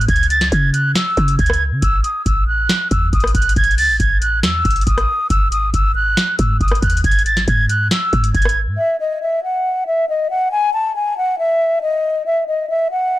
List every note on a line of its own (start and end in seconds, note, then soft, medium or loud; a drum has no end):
0.01 closed hi-hat medium
0.08 0.50 C#2 loud
0.08 0.27 G#6 loud
0.08 kick loud
0.08 closed hi-hat medium
0.16 closed hi-hat medium
0.23 closed hi-hat medium
0.30 0.49 A6 medium
0.30 closed hi-hat medium
0.30 open hi-hat medium
0.41 snare medium
0.41 closed hi-hat medium
0.52 0.94 C#3 loud
0.52 0.70 G#6 medium
0.52 kick medium
0.52 closed hi-hat medium
0.73 0.92 F#6 medium
0.73 closed hi-hat medium
0.95 1.36 E6 medium
0.95 snare loud
0.95 closed hi-hat medium
1.17 1.38 C#3 loud
1.17 kick loud
1.17 closed hi-hat soft
1.28 closed hi-hat medium
1.39 1.73 C#2 loud
1.39 1.63 G#6 loud
1.39 kick loud
1.39 closed hi-hat soft
1.46 cross-stick medium
1.46 closed hi-hat medium
1.53 closed hi-hat medium
1.72 1.82 C#3 loud
1.82 2.03 A1 loud
1.82 2.01 E6 loud
1.82 kick loud
1.82 closed hi-hat medium
2.04 2.23 D#6 medium
2.04 closed hi-hat medium
2.26 2.68 A1 loud
2.26 2.45 E6 medium
2.26 kick loud
2.26 closed hi-hat medium
2.48 2.89 F#6 medium
2.69 snare loud
2.69 closed hi-hat medium
2.91 3.12 E2 loud
2.91 3.09 E6 medium
2.91 kick loud
2.91 closed hi-hat medium
3.13 3.34 A1 loud
3.13 3.32 D#6 medium
3.13 kick loud
3.13 closed hi-hat soft
3.20 cross-stick medium
3.20 closed hi-hat soft
3.27 closed hi-hat medium
3.35 3.56 A1 loud
3.35 3.53 F#6 medium
3.35 kick loud
3.35 closed hi-hat medium
3.42 closed hi-hat medium
3.49 closed hi-hat medium
3.56 3.80 A1 loud
3.56 3.75 G#6 loud
3.56 kick loud
3.56 closed hi-hat medium
3.64 closed hi-hat medium
3.71 closed hi-hat soft
3.78 3.90 C#2 loud
3.78 3.97 A6 medium
3.78 open hi-hat medium
3.89 3.99 A1 loud
4.00 4.45 A1 loud
4.00 4.18 G#6 medium
4.00 kick medium
4.00 closed hi-hat medium
4.22 4.40 F#6 medium
4.22 closed hi-hat medium
4.43 4.64 E2 loud
4.43 4.84 E6 loud
4.43 snare loud
4.43 closed hi-hat medium
4.65 4.86 A1 loud
4.65 kick loud
4.65 closed hi-hat medium
4.70 closed hi-hat medium
4.76 closed hi-hat medium
4.81 closed hi-hat medium
4.87 5.08 A1 loud
4.87 5.28 D#6 medium
4.87 kick loud
4.87 closed hi-hat medium
4.98 cross-stick medium
4.98 closed hi-hat soft
5.30 5.72 G#1 loud
5.30 5.49 E6 loud
5.30 kick loud
5.30 closed hi-hat medium
5.52 5.70 D#6 medium
5.52 closed hi-hat medium
5.74 6.16 G#1 loud
5.74 5.92 E6 medium
5.74 kick medium
5.74 closed hi-hat medium
5.96 6.36 F#6 medium
6.17 snare loud
6.17 closed hi-hat medium
6.39 6.60 G#2 loud
6.39 6.57 E6 medium
6.39 kick loud
6.39 closed hi-hat medium
6.61 6.82 G#1 loud
6.61 6.79 D#6 medium
6.61 kick loud
6.61 closed hi-hat soft
6.68 cross-stick medium
6.68 closed hi-hat medium
6.75 closed hi-hat medium
6.82 7.03 D#2 loud
6.82 7.01 F#6 medium
6.82 kick loud
6.82 closed hi-hat medium
6.90 closed hi-hat medium
6.97 closed hi-hat medium
7.04 7.46 G#1 loud
7.04 7.23 G#6 loud
7.04 kick loud
7.04 closed hi-hat medium
7.11 closed hi-hat medium
7.19 closed hi-hat soft
7.26 7.44 A6 medium
7.26 closed hi-hat medium
7.26 open hi-hat medium
7.37 snare medium
7.37 closed hi-hat medium
7.47 7.89 G#2 loud
7.47 7.66 G#6 medium
7.47 kick medium
7.47 closed hi-hat medium
7.69 7.88 F#6 medium
7.69 closed hi-hat medium
7.91 8.32 E6 medium
7.91 snare loud
7.91 closed hi-hat medium
8.13 8.34 G#2 loud
8.13 kick loud
8.13 closed hi-hat soft
8.24 closed hi-hat medium
8.34 8.69 G#1 loud
8.34 8.58 G#6 medium
8.34 kick loud
8.34 closed hi-hat soft
8.42 cross-stick medium
8.42 closed hi-hat medium
8.49 closed hi-hat medium
8.67 8.78 G#2 loud
8.78 8.96 E5 medium
9.00 9.19 D#5 medium
9.22 9.40 E5 medium
9.43 9.84 F#5 medium
9.87 10.05 E5 medium
10.09 10.27 D#5 medium
10.30 10.49 F#5 medium
10.52 10.70 G#5 loud
10.74 10.92 A5 medium
10.96 11.14 G#5 medium
11.17 11.36 F#5 medium
11.38 11.80 E5 loud
11.82 12.23 D#5 medium
12.26 12.44 E5 loud
12.48 12.66 D#5 medium
12.70 12.88 E5 medium
12.91 13.19 F#5 medium